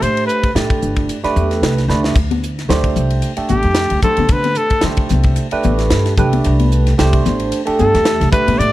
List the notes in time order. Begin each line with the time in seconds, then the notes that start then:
Already playing: A3 D4 G4 C5
0.02 A2 C5, hi-hat pedal, ride
0.17 ride
0.26 B4, hi-hat pedal
0.43 kick, ride
0.55 A2 A3 D4 G4 D5, snare, hi-hat pedal, ride
0.70 muted upright bass stroke, kick, ride
0.82 G1, hi-hat pedal
0.96 kick, ride
1.09 hi-hat pedal, ride
1.23 A3 D4 G4 B4, muted upright bass stroke, snare, ride
1.36 E2, hi-hat pedal
1.51 snare, ride
1.62 C2, snare, hi-hat pedal, ride
1.78 snare, ride
1.88 D2 A3 D4 G4 B4, snare, hi-hat pedal
2.04 snare
2.15 D2, kick, hi-hat pedal, ride, splash
2.31 ride, high conga
2.43 hi-hat pedal
2.59 snare, ride
2.69 D2 A3 D4 G4 C5, snare, hi-hat pedal, ride, low conga
2.84 kick, ride
2.96 C2, hi-hat pedal, low conga
3.10 ride
3.22 hi-hat pedal, ride
3.37 A3 D4 G4 A4, muted upright bass stroke, ride
3.49 A1 G4, hi-hat pedal, high conga
3.63 F2, ride
3.75 snare, hi-hat pedal, ride
3.90 D2, ride
4.02 A3 D4 G4 A4 C5, muted upright bass stroke, kick, hi-hat pedal, low conga
4.17 D3, ride, high conga
4.29 D3 B4, kick, hi-hat pedal, ride
4.44 ride, high conga
4.55 A4, hi-hat pedal
4.70 kick, ride
4.81 D3 A3 D4 G4 C5, snare, hi-hat pedal, ride, low conga
4.97 muted upright bass stroke, kick, ride
5.09 C2, snare, hi-hat pedal, high conga, low conga
5.23 kick, ride
5.36 hi-hat pedal, ride
5.51 A3 D4 G4 B4, muted upright bass stroke, ride
5.63 A1, hi-hat pedal, high conga
5.79 snare, ride
5.90 G2, snare, hi-hat pedal, ride
6.06 snare, ride
6.17 C2 A3 D4 G4 B4, kick, hi-hat pedal, low conga
6.33 ride, high conga
6.44 C2, hi-hat pedal, ride
6.60 ride, high conga
6.72 hi-hat pedal
6.87 snare, ride
6.98 C2 A3 D4 G4 C5, snare, hi-hat pedal, ride, low conga
7.13 kick, ride
7.26 A1, snare, hi-hat pedal, high conga, low conga
7.40 ride
7.52 hi-hat pedal, ride
7.66 A3 D4 G4 A4, muted upright bass stroke, ride
7.78 G2 A4, hi-hat pedal, high conga
7.94 E2, snare, ride
8.05 snare, hi-hat pedal, ride
8.21 C2, snare, ride
8.32 A3 D4 G4 B4, muted upright bass stroke, kick, hi-hat pedal, low conga
8.48 A2, ride, high conga
8.58 A2 D5, hi-hat pedal, ride